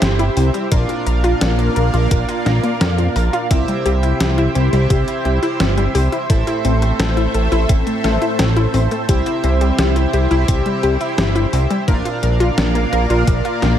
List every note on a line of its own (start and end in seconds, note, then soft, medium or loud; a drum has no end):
0.00 0.30 G1 loud
0.00 0.67 C3 medium
0.00 0.67 C4 medium
0.00 0.67 E4 medium
0.00 0.69 E4 medium
0.00 0.67 G4 medium
0.00 0.69 G4 medium
0.00 0.11 G4 medium
0.00 0.67 C5 medium
0.00 0.69 C5 medium
0.00 0.67 E5 medium
0.00 snare loud
0.00 closed hi-hat loud
0.19 0.28 E4 loud
0.19 closed hi-hat soft
0.37 0.51 C2 loud
0.37 0.52 C4 medium
0.37 open hi-hat medium
0.54 0.63 G3 medium
0.54 closed hi-hat soft
0.72 0.86 A#1 loud
0.72 1.90 A#2 medium
0.72 3.48 A#3 medium
0.72 1.90 D4 medium
0.72 1.90 F4 medium
0.72 0.87 A#4 loud
0.72 1.90 A#4 medium
0.72 3.48 A#4 medium
0.72 3.48 D5 medium
0.72 1.90 D5 medium
0.72 3.48 F5 medium
0.72 1.90 F5 loud
0.72 kick loud
0.72 closed hi-hat loud
0.89 1.04 F4 medium
0.89 closed hi-hat soft
1.06 1.34 A#1 medium
1.06 1.16 A#4 medium
1.06 closed hi-hat medium
1.24 1.33 F4 loud
1.24 closed hi-hat soft
1.41 1.69 A#1 loud
1.41 1.57 D4 medium
1.41 snare loud
1.41 closed hi-hat loud
1.59 1.68 A#3 medium
1.59 closed hi-hat soft
1.76 1.90 A#1 medium
1.76 1.91 A#4 loud
1.76 closed hi-hat medium
1.94 2.08 A#1 loud
1.94 3.47 A#2 medium
1.94 3.47 D4 medium
1.94 2.09 F4 medium
1.94 3.47 F4 medium
1.94 3.47 A#4 medium
1.94 3.47 D5 medium
1.94 3.47 F5 medium
1.94 closed hi-hat soft
2.11 2.25 A#1 medium
2.11 2.20 A#4 medium
2.11 kick loud
2.11 closed hi-hat loud
2.29 2.38 F4 loud
2.29 closed hi-hat soft
2.46 2.60 A#1 medium
2.46 2.61 D4 medium
2.46 snare medium
2.46 closed hi-hat soft
2.63 2.73 A#3 medium
2.63 closed hi-hat soft
2.81 3.09 F2 loud
2.81 2.96 A#4 loud
2.81 snare loud
2.81 closed hi-hat medium
2.98 3.14 F4 medium
2.98 closed hi-hat soft
3.16 3.30 A#1 loud
3.16 3.25 A#4 medium
3.16 open hi-hat medium
3.33 3.42 F4 loud
3.33 closed hi-hat soft
3.51 3.65 C2 loud
3.51 4.69 C3 loud
3.51 3.66 C4 medium
3.51 4.69 C4 medium
3.51 4.69 E4 medium
3.51 6.27 E4 medium
3.51 4.69 G4 medium
3.51 6.27 G4 medium
3.51 4.69 C5 medium
3.51 11.84 C5 medium
3.51 4.69 E5 loud
3.51 kick loud
3.51 closed hi-hat loud
3.68 3.77 G3 medium
3.68 closed hi-hat soft
3.85 4.13 C2 medium
3.85 4.01 G4 loud
3.85 closed hi-hat medium
4.03 4.18 E4 medium
4.03 closed hi-hat soft
4.20 4.48 C2 medium
4.20 4.30 G4 medium
4.20 snare loud
4.20 closed hi-hat medium
4.38 4.47 E4 loud
4.38 closed hi-hat soft
4.55 4.69 C2 medium
4.55 4.71 C4 medium
4.55 closed hi-hat medium
4.73 4.87 C2 medium
4.73 5.38 C3 loud
4.73 4.82 G3 medium
4.73 5.38 C4 medium
4.73 5.38 E4 medium
4.73 5.38 G4 medium
4.73 5.38 C5 medium
4.73 5.38 E5 loud
4.73 closed hi-hat soft
4.90 5.04 C2 medium
4.90 5.05 G4 loud
4.90 kick loud
4.90 closed hi-hat medium
5.08 5.23 E4 medium
5.08 closed hi-hat soft
5.25 5.39 C2 medium
5.25 5.34 G4 medium
5.25 closed hi-hat soft
5.43 6.26 C3 medium
5.43 6.26 C4 medium
5.43 5.52 E4 loud
5.43 6.26 E4 medium
5.43 6.26 G4 medium
5.43 6.26 C5 medium
5.43 6.26 E5 medium
5.43 closed hi-hat soft
5.60 5.88 G1 loud
5.60 5.75 C4 medium
5.60 snare loud
5.60 closed hi-hat medium
5.77 5.87 G3 medium
5.77 closed hi-hat soft
5.95 6.09 C2 medium
5.95 6.10 G4 loud
5.95 open hi-hat medium
6.12 6.28 E4 medium
6.12 closed hi-hat soft
6.30 6.44 A1 loud
6.30 7.48 A2 medium
6.30 9.06 A3 medium
6.30 7.48 C4 medium
6.30 7.48 E4 medium
6.30 6.39 A4 medium
6.30 9.06 A4 medium
6.30 7.48 A4 medium
6.30 7.48 C5 medium
6.30 7.48 E5 loud
6.30 9.06 E5 medium
6.30 kick loud
6.30 closed hi-hat medium
6.47 6.56 E4 loud
6.47 closed hi-hat soft
6.65 6.92 A1 medium
6.65 6.80 C4 medium
6.65 closed hi-hat medium
6.82 6.91 A3 medium
6.82 closed hi-hat soft
7.00 7.27 A1 loud
7.00 7.15 A4 loud
7.00 snare loud
7.00 closed hi-hat medium
7.17 7.32 E4 medium
7.17 closed hi-hat soft
7.34 7.48 A1 medium
7.34 7.44 A4 medium
7.34 closed hi-hat medium
7.52 7.66 A1 medium
7.52 9.05 A2 medium
7.52 9.05 C4 medium
7.52 7.61 E4 loud
7.52 9.05 E4 medium
7.52 9.05 A4 medium
7.52 9.05 C5 medium
7.52 9.05 E5 medium
7.52 closed hi-hat soft
7.69 7.83 A1 medium
7.69 7.85 C4 medium
7.69 kick loud
7.69 closed hi-hat medium
7.87 7.96 A3 medium
7.87 closed hi-hat soft
8.04 8.18 A1 medium
8.04 8.19 A4 loud
8.04 snare medium
8.04 closed hi-hat soft
8.22 8.37 E4 medium
8.22 closed hi-hat soft
8.39 8.67 A1 loud
8.39 8.48 A4 medium
8.39 snare loud
8.39 closed hi-hat medium
8.56 8.66 E4 loud
8.56 closed hi-hat soft
8.74 8.88 A1 medium
8.74 8.89 C4 medium
8.74 open hi-hat medium
8.91 9.01 A3 medium
8.91 closed hi-hat soft
9.09 9.23 C2 loud
9.09 10.27 C3 loud
9.09 10.27 C4 medium
9.09 10.27 E4 medium
9.09 11.85 E4 medium
9.09 9.18 G4 medium
9.09 10.27 G4 medium
9.09 11.85 G4 medium
9.09 10.27 C5 medium
9.09 10.27 E5 loud
9.09 kick loud
9.09 closed hi-hat medium
9.26 9.35 E4 loud
9.26 closed hi-hat soft
9.44 9.72 C2 medium
9.44 9.59 C4 medium
9.44 closed hi-hat medium
9.61 9.70 G3 medium
9.61 closed hi-hat soft
9.79 10.06 C2 loud
9.79 9.94 G4 loud
9.79 snare loud
9.79 closed hi-hat medium
9.96 10.11 E4 medium
9.96 closed hi-hat soft
10.13 10.27 C2 medium
10.13 10.23 G4 medium
10.13 closed hi-hat medium
10.31 10.45 C2 medium
10.31 10.97 C3 loud
10.31 10.97 C4 medium
10.31 10.40 E4 loud
10.31 10.97 E4 medium
10.31 10.97 G4 medium
10.31 10.97 C5 medium
10.31 10.97 E5 loud
10.31 closed hi-hat soft
10.48 10.62 C2 medium
10.48 10.64 C4 medium
10.48 kick loud
10.48 closed hi-hat medium
10.66 10.75 G3 medium
10.66 closed hi-hat soft
10.83 10.97 C2 medium
10.83 10.98 G4 loud
10.83 closed hi-hat soft
11.01 11.84 C3 medium
11.01 11.84 C4 medium
11.01 11.16 E4 medium
11.01 11.84 E4 medium
11.01 11.84 G4 medium
11.01 11.84 C5 medium
11.01 11.84 E5 medium
11.01 closed hi-hat soft
11.18 11.46 G1 loud
11.18 11.27 G4 medium
11.18 snare loud
11.18 closed hi-hat medium
11.36 11.45 E4 loud
11.36 closed hi-hat soft
11.53 11.67 C2 loud
11.53 11.68 C4 medium
11.53 open hi-hat medium
11.70 11.80 G3 medium
11.70 closed hi-hat soft
11.88 12.02 A#1 loud
11.88 13.06 A#2 medium
11.88 13.79 A#3 medium
11.88 13.06 D4 medium
11.88 13.06 F4 medium
11.88 12.03 A#4 loud
11.88 13.06 A#4 medium
11.88 13.79 A#4 medium
11.88 13.06 D5 medium
11.88 13.79 D5 medium
11.88 13.06 F5 loud
11.88 13.79 F5 medium
11.88 kick loud
11.88 closed hi-hat medium
12.05 12.21 F4 medium
12.05 closed hi-hat soft
12.23 12.51 A#1 medium
12.23 12.32 A#4 medium
12.23 closed hi-hat medium
12.40 12.49 F4 loud
12.40 closed hi-hat soft
12.58 12.85 A#1 loud
12.58 12.73 D4 medium
12.58 snare loud
12.58 closed hi-hat medium
12.75 12.84 A#3 medium
12.75 closed hi-hat soft
12.93 13.06 A#1 medium
12.93 13.08 A#4 loud
12.93 closed hi-hat medium
13.10 13.24 A#1 loud
13.10 13.79 A#2 medium
13.10 13.79 D4 medium
13.10 13.25 F4 medium
13.10 13.79 F4 medium
13.10 13.79 A#4 medium
13.10 13.79 D5 medium
13.10 13.79 F5 medium
13.10 closed hi-hat soft
13.27 13.41 A#1 medium
13.27 13.37 A#4 medium
13.27 kick loud
13.27 closed hi-hat medium
13.45 13.54 F4 loud
13.45 closed hi-hat soft
13.62 13.76 A#1 medium
13.62 13.78 D4 medium
13.62 snare medium
13.62 closed hi-hat soft